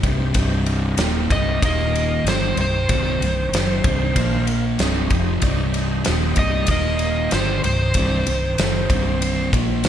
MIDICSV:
0, 0, Header, 1, 7, 480
1, 0, Start_track
1, 0, Key_signature, -3, "minor"
1, 0, Tempo, 632911
1, 272, Time_signature, 4, 2, 24, 8
1, 7498, End_track
2, 0, Start_track
2, 0, Title_t, "Electric slide guitar"
2, 0, Program_c, 0, 29
2, 1002, Note_on_c, 0, 75, 86
2, 1232, Note_off_c, 0, 75, 0
2, 1252, Note_on_c, 0, 75, 80
2, 1710, Note_off_c, 0, 75, 0
2, 1735, Note_on_c, 0, 72, 90
2, 1959, Note_off_c, 0, 72, 0
2, 1978, Note_on_c, 0, 72, 90
2, 3378, Note_off_c, 0, 72, 0
2, 4846, Note_on_c, 0, 75, 99
2, 5074, Note_off_c, 0, 75, 0
2, 5090, Note_on_c, 0, 75, 87
2, 5548, Note_off_c, 0, 75, 0
2, 5559, Note_on_c, 0, 72, 82
2, 5789, Note_off_c, 0, 72, 0
2, 5803, Note_on_c, 0, 72, 99
2, 7206, Note_off_c, 0, 72, 0
2, 7498, End_track
3, 0, Start_track
3, 0, Title_t, "Tonewheel organ"
3, 0, Program_c, 1, 16
3, 33, Note_on_c, 1, 60, 73
3, 33, Note_on_c, 1, 63, 71
3, 37, Note_on_c, 1, 72, 83
3, 38, Note_on_c, 1, 67, 70
3, 216, Note_off_c, 1, 60, 0
3, 216, Note_off_c, 1, 63, 0
3, 218, Note_off_c, 1, 67, 0
3, 218, Note_off_c, 1, 72, 0
3, 265, Note_on_c, 1, 60, 80
3, 266, Note_on_c, 1, 63, 74
3, 267, Note_on_c, 1, 67, 76
3, 271, Note_on_c, 1, 72, 93
3, 452, Note_off_c, 1, 60, 0
3, 453, Note_off_c, 1, 63, 0
3, 453, Note_off_c, 1, 67, 0
3, 455, Note_off_c, 1, 72, 0
3, 496, Note_on_c, 1, 60, 82
3, 502, Note_on_c, 1, 63, 77
3, 505, Note_on_c, 1, 70, 98
3, 507, Note_on_c, 1, 67, 80
3, 1227, Note_off_c, 1, 60, 0
3, 1230, Note_off_c, 1, 63, 0
3, 1231, Note_off_c, 1, 70, 0
3, 1232, Note_off_c, 1, 67, 0
3, 1240, Note_on_c, 1, 58, 72
3, 1245, Note_on_c, 1, 70, 64
3, 1247, Note_on_c, 1, 63, 67
3, 1247, Note_on_c, 1, 75, 82
3, 1622, Note_off_c, 1, 58, 0
3, 1625, Note_off_c, 1, 70, 0
3, 1626, Note_off_c, 1, 63, 0
3, 1626, Note_off_c, 1, 75, 0
3, 1701, Note_on_c, 1, 67, 69
3, 1703, Note_on_c, 1, 63, 68
3, 1705, Note_on_c, 1, 60, 69
3, 1710, Note_on_c, 1, 72, 83
3, 1901, Note_off_c, 1, 67, 0
3, 1902, Note_off_c, 1, 63, 0
3, 1903, Note_off_c, 1, 60, 0
3, 1905, Note_off_c, 1, 72, 0
3, 1929, Note_on_c, 1, 60, 61
3, 1931, Note_on_c, 1, 63, 57
3, 1938, Note_on_c, 1, 72, 69
3, 1942, Note_on_c, 1, 67, 55
3, 2126, Note_off_c, 1, 60, 0
3, 2127, Note_off_c, 1, 63, 0
3, 2131, Note_off_c, 1, 72, 0
3, 2133, Note_off_c, 1, 67, 0
3, 2180, Note_on_c, 1, 60, 65
3, 2180, Note_on_c, 1, 67, 57
3, 2190, Note_on_c, 1, 63, 62
3, 2190, Note_on_c, 1, 70, 70
3, 2371, Note_off_c, 1, 60, 0
3, 2372, Note_off_c, 1, 67, 0
3, 2377, Note_off_c, 1, 63, 0
3, 2377, Note_off_c, 1, 70, 0
3, 2430, Note_on_c, 1, 60, 73
3, 2436, Note_on_c, 1, 63, 63
3, 2441, Note_on_c, 1, 79, 68
3, 2444, Note_on_c, 1, 72, 76
3, 3138, Note_on_c, 1, 58, 84
3, 3143, Note_on_c, 1, 65, 74
3, 3151, Note_on_c, 1, 70, 76
3, 3154, Note_off_c, 1, 60, 0
3, 3155, Note_on_c, 1, 77, 100
3, 3157, Note_off_c, 1, 63, 0
3, 3159, Note_off_c, 1, 79, 0
3, 3161, Note_off_c, 1, 72, 0
3, 3531, Note_off_c, 1, 58, 0
3, 3534, Note_off_c, 1, 65, 0
3, 3538, Note_off_c, 1, 70, 0
3, 3540, Note_off_c, 1, 77, 0
3, 3639, Note_on_c, 1, 63, 86
3, 3645, Note_on_c, 1, 72, 82
3, 3645, Note_on_c, 1, 75, 95
3, 3646, Note_on_c, 1, 67, 78
3, 3830, Note_off_c, 1, 63, 0
3, 3833, Note_off_c, 1, 67, 0
3, 3833, Note_off_c, 1, 72, 0
3, 3833, Note_off_c, 1, 75, 0
3, 3853, Note_on_c, 1, 67, 71
3, 3861, Note_on_c, 1, 63, 71
3, 3864, Note_on_c, 1, 75, 83
3, 3865, Note_on_c, 1, 72, 69
3, 4048, Note_off_c, 1, 67, 0
3, 4052, Note_off_c, 1, 63, 0
3, 4053, Note_off_c, 1, 75, 0
3, 4054, Note_off_c, 1, 72, 0
3, 4093, Note_on_c, 1, 63, 86
3, 4096, Note_on_c, 1, 67, 72
3, 4096, Note_on_c, 1, 75, 95
3, 4101, Note_on_c, 1, 72, 74
3, 4288, Note_off_c, 1, 63, 0
3, 4289, Note_off_c, 1, 67, 0
3, 4289, Note_off_c, 1, 75, 0
3, 4292, Note_off_c, 1, 72, 0
3, 4338, Note_on_c, 1, 67, 68
3, 4341, Note_on_c, 1, 63, 85
3, 4343, Note_on_c, 1, 72, 77
3, 4350, Note_on_c, 1, 75, 88
3, 5027, Note_off_c, 1, 63, 0
3, 5032, Note_off_c, 1, 75, 0
3, 5034, Note_on_c, 1, 70, 61
3, 5036, Note_on_c, 1, 63, 65
3, 5039, Note_on_c, 1, 58, 74
3, 5041, Note_on_c, 1, 75, 83
3, 5066, Note_off_c, 1, 67, 0
3, 5069, Note_off_c, 1, 72, 0
3, 5438, Note_off_c, 1, 70, 0
3, 5439, Note_off_c, 1, 63, 0
3, 5441, Note_off_c, 1, 58, 0
3, 5442, Note_off_c, 1, 75, 0
3, 5513, Note_on_c, 1, 60, 76
3, 5525, Note_on_c, 1, 63, 65
3, 5526, Note_on_c, 1, 67, 68
3, 5528, Note_on_c, 1, 72, 81
3, 5725, Note_off_c, 1, 60, 0
3, 5732, Note_off_c, 1, 63, 0
3, 5732, Note_off_c, 1, 67, 0
3, 5733, Note_off_c, 1, 72, 0
3, 5792, Note_on_c, 1, 60, 64
3, 5797, Note_on_c, 1, 63, 52
3, 5802, Note_on_c, 1, 72, 70
3, 5804, Note_on_c, 1, 67, 55
3, 5976, Note_off_c, 1, 60, 0
3, 5978, Note_off_c, 1, 63, 0
3, 5981, Note_off_c, 1, 72, 0
3, 5982, Note_off_c, 1, 67, 0
3, 6032, Note_on_c, 1, 63, 59
3, 6038, Note_on_c, 1, 67, 62
3, 6040, Note_on_c, 1, 60, 65
3, 6050, Note_on_c, 1, 72, 69
3, 6216, Note_off_c, 1, 63, 0
3, 6219, Note_off_c, 1, 67, 0
3, 6220, Note_off_c, 1, 60, 0
3, 6225, Note_off_c, 1, 72, 0
3, 6286, Note_on_c, 1, 60, 70
3, 6288, Note_on_c, 1, 63, 62
3, 6291, Note_on_c, 1, 79, 65
3, 6295, Note_on_c, 1, 72, 77
3, 7010, Note_off_c, 1, 60, 0
3, 7011, Note_off_c, 1, 63, 0
3, 7013, Note_off_c, 1, 79, 0
3, 7015, Note_off_c, 1, 72, 0
3, 7498, End_track
4, 0, Start_track
4, 0, Title_t, "Lead electric guitar"
4, 0, Program_c, 2, 29
4, 1002, Note_on_c, 2, 55, 78
4, 1222, Note_off_c, 2, 55, 0
4, 1242, Note_on_c, 2, 58, 74
4, 1689, Note_off_c, 2, 58, 0
4, 1718, Note_on_c, 2, 51, 75
4, 1941, Note_off_c, 2, 51, 0
4, 1963, Note_on_c, 2, 51, 74
4, 3370, Note_off_c, 2, 51, 0
4, 4840, Note_on_c, 2, 55, 84
4, 5061, Note_off_c, 2, 55, 0
4, 5081, Note_on_c, 2, 58, 77
4, 5527, Note_off_c, 2, 58, 0
4, 5571, Note_on_c, 2, 51, 74
4, 5786, Note_off_c, 2, 51, 0
4, 5806, Note_on_c, 2, 51, 77
4, 7207, Note_off_c, 2, 51, 0
4, 7498, End_track
5, 0, Start_track
5, 0, Title_t, "Distorted electric guitar"
5, 0, Program_c, 3, 30
5, 30, Note_on_c, 3, 36, 83
5, 35, Note_on_c, 3, 43, 92
5, 46, Note_on_c, 3, 48, 88
5, 259, Note_off_c, 3, 36, 0
5, 267, Note_off_c, 3, 43, 0
5, 268, Note_on_c, 3, 36, 100
5, 272, Note_off_c, 3, 48, 0
5, 275, Note_on_c, 3, 43, 96
5, 284, Note_on_c, 3, 48, 90
5, 745, Note_off_c, 3, 36, 0
5, 748, Note_off_c, 3, 43, 0
5, 749, Note_on_c, 3, 39, 94
5, 752, Note_off_c, 3, 48, 0
5, 755, Note_on_c, 3, 46, 104
5, 761, Note_on_c, 3, 51, 108
5, 985, Note_off_c, 3, 39, 0
5, 988, Note_off_c, 3, 46, 0
5, 991, Note_off_c, 3, 51, 0
5, 994, Note_on_c, 3, 36, 97
5, 1001, Note_on_c, 3, 43, 86
5, 1005, Note_on_c, 3, 48, 99
5, 1228, Note_off_c, 3, 36, 0
5, 1231, Note_off_c, 3, 43, 0
5, 1233, Note_off_c, 3, 48, 0
5, 1236, Note_on_c, 3, 39, 89
5, 1238, Note_on_c, 3, 46, 92
5, 1245, Note_on_c, 3, 51, 98
5, 1709, Note_off_c, 3, 39, 0
5, 1710, Note_off_c, 3, 46, 0
5, 1714, Note_off_c, 3, 51, 0
5, 1725, Note_on_c, 3, 43, 84
5, 1731, Note_on_c, 3, 50, 90
5, 1732, Note_on_c, 3, 55, 95
5, 1954, Note_off_c, 3, 43, 0
5, 1957, Note_off_c, 3, 50, 0
5, 1957, Note_off_c, 3, 55, 0
5, 1961, Note_on_c, 3, 36, 67
5, 1964, Note_on_c, 3, 43, 70
5, 2151, Note_off_c, 3, 36, 0
5, 2152, Note_off_c, 3, 43, 0
5, 2200, Note_on_c, 3, 36, 85
5, 2208, Note_on_c, 3, 43, 93
5, 2210, Note_on_c, 3, 48, 88
5, 2431, Note_off_c, 3, 36, 0
5, 2435, Note_off_c, 3, 43, 0
5, 2436, Note_off_c, 3, 48, 0
5, 2448, Note_on_c, 3, 36, 56
5, 2454, Note_on_c, 3, 43, 61
5, 2634, Note_off_c, 3, 36, 0
5, 2638, Note_off_c, 3, 43, 0
5, 2682, Note_on_c, 3, 42, 91
5, 2690, Note_on_c, 3, 49, 97
5, 2691, Note_on_c, 3, 54, 111
5, 2913, Note_off_c, 3, 42, 0
5, 2916, Note_off_c, 3, 49, 0
5, 2917, Note_off_c, 3, 54, 0
5, 2920, Note_on_c, 3, 36, 97
5, 2925, Note_on_c, 3, 43, 93
5, 2932, Note_on_c, 3, 48, 94
5, 3152, Note_off_c, 3, 36, 0
5, 3154, Note_off_c, 3, 43, 0
5, 3157, Note_off_c, 3, 48, 0
5, 3163, Note_on_c, 3, 46, 78
5, 3167, Note_on_c, 3, 53, 88
5, 3169, Note_on_c, 3, 58, 87
5, 3633, Note_off_c, 3, 46, 0
5, 3635, Note_off_c, 3, 53, 0
5, 3636, Note_off_c, 3, 58, 0
5, 3640, Note_on_c, 3, 36, 90
5, 3642, Note_on_c, 3, 43, 86
5, 3649, Note_on_c, 3, 48, 83
5, 3869, Note_off_c, 3, 36, 0
5, 3870, Note_off_c, 3, 48, 0
5, 3872, Note_off_c, 3, 43, 0
5, 3872, Note_on_c, 3, 41, 79
5, 3879, Note_on_c, 3, 48, 90
5, 3885, Note_on_c, 3, 53, 90
5, 4107, Note_off_c, 3, 41, 0
5, 4111, Note_off_c, 3, 48, 0
5, 4113, Note_off_c, 3, 53, 0
5, 4122, Note_on_c, 3, 36, 86
5, 4124, Note_on_c, 3, 43, 91
5, 4129, Note_on_c, 3, 48, 101
5, 4590, Note_off_c, 3, 36, 0
5, 4593, Note_off_c, 3, 43, 0
5, 4593, Note_on_c, 3, 39, 94
5, 4595, Note_off_c, 3, 48, 0
5, 4602, Note_on_c, 3, 46, 97
5, 4603, Note_on_c, 3, 51, 99
5, 4827, Note_off_c, 3, 39, 0
5, 4832, Note_off_c, 3, 46, 0
5, 4832, Note_off_c, 3, 51, 0
5, 4833, Note_on_c, 3, 36, 83
5, 4838, Note_on_c, 3, 43, 92
5, 4844, Note_on_c, 3, 48, 104
5, 5067, Note_off_c, 3, 36, 0
5, 5070, Note_off_c, 3, 43, 0
5, 5073, Note_off_c, 3, 48, 0
5, 5077, Note_on_c, 3, 39, 78
5, 5086, Note_on_c, 3, 46, 98
5, 5089, Note_on_c, 3, 51, 90
5, 5548, Note_off_c, 3, 39, 0
5, 5553, Note_off_c, 3, 46, 0
5, 5554, Note_off_c, 3, 51, 0
5, 5564, Note_on_c, 3, 43, 78
5, 5565, Note_on_c, 3, 50, 92
5, 5573, Note_on_c, 3, 55, 80
5, 5792, Note_off_c, 3, 43, 0
5, 5792, Note_off_c, 3, 50, 0
5, 5796, Note_off_c, 3, 55, 0
5, 5798, Note_on_c, 3, 36, 64
5, 5801, Note_on_c, 3, 43, 69
5, 5988, Note_off_c, 3, 36, 0
5, 5989, Note_off_c, 3, 43, 0
5, 6039, Note_on_c, 3, 36, 88
5, 6043, Note_on_c, 3, 43, 91
5, 6047, Note_on_c, 3, 48, 87
5, 6264, Note_off_c, 3, 36, 0
5, 6271, Note_off_c, 3, 43, 0
5, 6273, Note_off_c, 3, 48, 0
5, 6273, Note_on_c, 3, 36, 50
5, 6281, Note_on_c, 3, 43, 65
5, 6465, Note_off_c, 3, 36, 0
5, 6469, Note_off_c, 3, 43, 0
5, 6517, Note_on_c, 3, 42, 81
5, 6523, Note_on_c, 3, 49, 98
5, 6529, Note_on_c, 3, 54, 97
5, 6747, Note_off_c, 3, 42, 0
5, 6750, Note_off_c, 3, 49, 0
5, 6750, Note_on_c, 3, 36, 93
5, 6753, Note_off_c, 3, 54, 0
5, 6753, Note_on_c, 3, 43, 99
5, 6760, Note_on_c, 3, 48, 96
5, 7222, Note_off_c, 3, 36, 0
5, 7225, Note_off_c, 3, 43, 0
5, 7225, Note_on_c, 3, 46, 84
5, 7228, Note_off_c, 3, 48, 0
5, 7234, Note_on_c, 3, 53, 83
5, 7238, Note_on_c, 3, 58, 78
5, 7461, Note_off_c, 3, 46, 0
5, 7465, Note_off_c, 3, 53, 0
5, 7467, Note_off_c, 3, 58, 0
5, 7498, End_track
6, 0, Start_track
6, 0, Title_t, "Fingered electric bass"
6, 0, Program_c, 4, 33
6, 25, Note_on_c, 4, 24, 89
6, 252, Note_off_c, 4, 24, 0
6, 270, Note_on_c, 4, 24, 87
6, 723, Note_off_c, 4, 24, 0
6, 743, Note_on_c, 4, 27, 83
6, 972, Note_off_c, 4, 27, 0
6, 991, Note_on_c, 4, 24, 83
6, 1216, Note_off_c, 4, 24, 0
6, 1232, Note_on_c, 4, 27, 90
6, 1684, Note_off_c, 4, 27, 0
6, 1702, Note_on_c, 4, 31, 80
6, 1932, Note_off_c, 4, 31, 0
6, 1949, Note_on_c, 4, 24, 84
6, 2176, Note_off_c, 4, 24, 0
6, 2193, Note_on_c, 4, 24, 92
6, 2418, Note_off_c, 4, 24, 0
6, 2432, Note_on_c, 4, 24, 70
6, 2658, Note_off_c, 4, 24, 0
6, 2671, Note_on_c, 4, 30, 83
6, 2897, Note_off_c, 4, 30, 0
6, 2916, Note_on_c, 4, 24, 79
6, 3140, Note_off_c, 4, 24, 0
6, 3153, Note_on_c, 4, 34, 80
6, 3605, Note_off_c, 4, 34, 0
6, 3636, Note_on_c, 4, 24, 77
6, 3860, Note_off_c, 4, 24, 0
6, 3873, Note_on_c, 4, 29, 89
6, 4098, Note_off_c, 4, 29, 0
6, 4108, Note_on_c, 4, 24, 93
6, 4562, Note_off_c, 4, 24, 0
6, 4605, Note_on_c, 4, 27, 81
6, 4824, Note_off_c, 4, 27, 0
6, 4834, Note_on_c, 4, 24, 83
6, 5058, Note_off_c, 4, 24, 0
6, 5071, Note_on_c, 4, 27, 83
6, 5522, Note_off_c, 4, 27, 0
6, 5556, Note_on_c, 4, 31, 92
6, 5778, Note_off_c, 4, 31, 0
6, 5796, Note_on_c, 4, 24, 80
6, 6018, Note_off_c, 4, 24, 0
6, 6029, Note_on_c, 4, 24, 88
6, 6254, Note_off_c, 4, 24, 0
6, 6272, Note_on_c, 4, 24, 67
6, 6495, Note_off_c, 4, 24, 0
6, 6512, Note_on_c, 4, 30, 77
6, 6735, Note_off_c, 4, 30, 0
6, 6750, Note_on_c, 4, 24, 79
6, 7200, Note_off_c, 4, 24, 0
6, 7228, Note_on_c, 4, 34, 89
6, 7452, Note_off_c, 4, 34, 0
6, 7472, Note_on_c, 4, 24, 77
6, 7498, Note_off_c, 4, 24, 0
6, 7498, End_track
7, 0, Start_track
7, 0, Title_t, "Drums"
7, 26, Note_on_c, 9, 36, 98
7, 27, Note_on_c, 9, 51, 64
7, 102, Note_off_c, 9, 36, 0
7, 103, Note_off_c, 9, 51, 0
7, 260, Note_on_c, 9, 51, 85
7, 265, Note_on_c, 9, 36, 90
7, 336, Note_off_c, 9, 51, 0
7, 340, Note_off_c, 9, 36, 0
7, 503, Note_on_c, 9, 51, 59
7, 579, Note_off_c, 9, 51, 0
7, 739, Note_on_c, 9, 51, 80
7, 749, Note_on_c, 9, 38, 104
7, 815, Note_off_c, 9, 51, 0
7, 825, Note_off_c, 9, 38, 0
7, 989, Note_on_c, 9, 36, 92
7, 991, Note_on_c, 9, 51, 66
7, 1065, Note_off_c, 9, 36, 0
7, 1067, Note_off_c, 9, 51, 0
7, 1232, Note_on_c, 9, 36, 105
7, 1234, Note_on_c, 9, 51, 91
7, 1308, Note_off_c, 9, 36, 0
7, 1310, Note_off_c, 9, 51, 0
7, 1482, Note_on_c, 9, 51, 69
7, 1558, Note_off_c, 9, 51, 0
7, 1719, Note_on_c, 9, 51, 82
7, 1729, Note_on_c, 9, 38, 97
7, 1795, Note_off_c, 9, 51, 0
7, 1804, Note_off_c, 9, 38, 0
7, 1951, Note_on_c, 9, 51, 64
7, 2027, Note_off_c, 9, 51, 0
7, 2192, Note_on_c, 9, 51, 82
7, 2195, Note_on_c, 9, 36, 103
7, 2268, Note_off_c, 9, 51, 0
7, 2270, Note_off_c, 9, 36, 0
7, 2444, Note_on_c, 9, 51, 62
7, 2519, Note_off_c, 9, 51, 0
7, 2681, Note_on_c, 9, 51, 86
7, 2691, Note_on_c, 9, 38, 106
7, 2757, Note_off_c, 9, 51, 0
7, 2767, Note_off_c, 9, 38, 0
7, 2913, Note_on_c, 9, 51, 69
7, 2915, Note_on_c, 9, 36, 107
7, 2989, Note_off_c, 9, 51, 0
7, 2991, Note_off_c, 9, 36, 0
7, 3154, Note_on_c, 9, 51, 87
7, 3155, Note_on_c, 9, 36, 96
7, 3230, Note_off_c, 9, 51, 0
7, 3231, Note_off_c, 9, 36, 0
7, 3392, Note_on_c, 9, 51, 67
7, 3468, Note_off_c, 9, 51, 0
7, 3632, Note_on_c, 9, 51, 75
7, 3642, Note_on_c, 9, 38, 99
7, 3708, Note_off_c, 9, 51, 0
7, 3717, Note_off_c, 9, 38, 0
7, 3870, Note_on_c, 9, 51, 60
7, 3873, Note_on_c, 9, 36, 97
7, 3946, Note_off_c, 9, 51, 0
7, 3948, Note_off_c, 9, 36, 0
7, 4108, Note_on_c, 9, 51, 76
7, 4113, Note_on_c, 9, 36, 96
7, 4184, Note_off_c, 9, 51, 0
7, 4189, Note_off_c, 9, 36, 0
7, 4353, Note_on_c, 9, 51, 60
7, 4429, Note_off_c, 9, 51, 0
7, 4585, Note_on_c, 9, 51, 86
7, 4595, Note_on_c, 9, 38, 103
7, 4661, Note_off_c, 9, 51, 0
7, 4671, Note_off_c, 9, 38, 0
7, 4821, Note_on_c, 9, 51, 68
7, 4830, Note_on_c, 9, 36, 96
7, 4897, Note_off_c, 9, 51, 0
7, 4906, Note_off_c, 9, 36, 0
7, 5055, Note_on_c, 9, 51, 89
7, 5068, Note_on_c, 9, 36, 90
7, 5131, Note_off_c, 9, 51, 0
7, 5144, Note_off_c, 9, 36, 0
7, 5301, Note_on_c, 9, 51, 62
7, 5377, Note_off_c, 9, 51, 0
7, 5544, Note_on_c, 9, 51, 77
7, 5554, Note_on_c, 9, 38, 99
7, 5620, Note_off_c, 9, 51, 0
7, 5630, Note_off_c, 9, 38, 0
7, 5793, Note_on_c, 9, 51, 70
7, 5869, Note_off_c, 9, 51, 0
7, 6021, Note_on_c, 9, 51, 87
7, 6029, Note_on_c, 9, 36, 93
7, 6097, Note_off_c, 9, 51, 0
7, 6105, Note_off_c, 9, 36, 0
7, 6269, Note_on_c, 9, 51, 66
7, 6345, Note_off_c, 9, 51, 0
7, 6509, Note_on_c, 9, 51, 86
7, 6519, Note_on_c, 9, 38, 108
7, 6585, Note_off_c, 9, 51, 0
7, 6595, Note_off_c, 9, 38, 0
7, 6748, Note_on_c, 9, 36, 104
7, 6751, Note_on_c, 9, 51, 70
7, 6824, Note_off_c, 9, 36, 0
7, 6827, Note_off_c, 9, 51, 0
7, 6991, Note_on_c, 9, 51, 89
7, 7067, Note_off_c, 9, 51, 0
7, 7228, Note_on_c, 9, 36, 98
7, 7235, Note_on_c, 9, 51, 69
7, 7303, Note_off_c, 9, 36, 0
7, 7310, Note_off_c, 9, 51, 0
7, 7460, Note_on_c, 9, 51, 74
7, 7469, Note_on_c, 9, 38, 112
7, 7498, Note_off_c, 9, 38, 0
7, 7498, Note_off_c, 9, 51, 0
7, 7498, End_track
0, 0, End_of_file